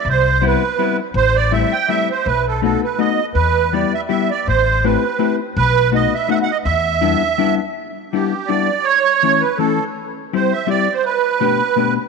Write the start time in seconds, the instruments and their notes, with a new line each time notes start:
0.05 upright bass C2
0.09 accordion C5
0.41 hollow-body jazz guitar G3 B3 C4 E4
0.47 accordion B4
0.79 hollow-body jazz guitar G3 B3 C4 E4
1.14 upright bass A1, accordion C5
1.36 accordion D5
1.51 hollow-body jazz guitar G3 A3 C4 E4, accordion E5
1.72 accordion G5
1.88 hollow-body jazz guitar G3 A3 C4 E4, accordion E5
2.11 accordion C5
2.26 upright bass B1, accordion B4
2.48 accordion A4
2.62 hollow-body jazz guitar A3 B3 D#4 F#4, accordion A4
2.84 accordion B4
2.98 hollow-body jazz guitar A3 B3 D#4 F#4, accordion D#5
3.35 upright bass E2, accordion B4
3.73 hollow-body jazz guitar G3 B3 E4 G4, accordion D5
3.93 accordion E5
4.09 hollow-body jazz guitar G3 B3 E4 G4, accordion E5
4.30 accordion D5
4.48 upright bass A1, accordion C5
4.84 hollow-body jazz guitar A3 C4 E4 G4, accordion B4
5.19 hollow-body jazz guitar A3 C4 E4 G4
5.57 upright bass B1, accordion B4
5.92 hollow-body jazz guitar A3 B3 D#4 F#4, accordion D#5
6.14 accordion E5
6.28 hollow-body jazz guitar A3 B3 D#4 F#4, accordion F#5
6.34 accordion E5
6.43 accordion F#5
6.51 accordion D#5
6.64 upright bass E2, accordion E5
7.01 hollow-body jazz guitar G3 B3 D4 E4
7.38 hollow-body jazz guitar G3 B3 D4 E4
8.13 hollow-body jazz guitar G3 B3 D4 E4, accordion G4
8.47 hollow-body jazz guitar G3 B3 D4 E4, accordion D5
8.84 accordion C#5
9.23 hollow-body jazz guitar E3 A3 C#4 E4
9.40 accordion B4
9.58 hollow-body jazz guitar E3 A3 C#4 E4, accordion A4
10.33 hollow-body jazz guitar G3 C4 E4 G4, accordion C5
10.53 accordion E5
10.67 hollow-body jazz guitar G3 C4 E4 G4, accordion D5
10.93 accordion C5
11.05 accordion B4
11.40 hollow-body jazz guitar B2 A3 B3 D4 G4
11.76 hollow-body jazz guitar B2 A3 B3 D4 G4